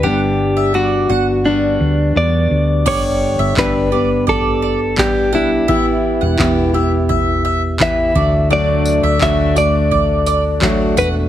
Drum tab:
CC |--------|x-------|--------|--------|
TB |--------|--------|--------|-x-x-x-x|
CP |--------|--x---x-|--x---x-|--x---x-|
BD |--------|o-o-o-o-|o-o-o-oo|--o-o-o-|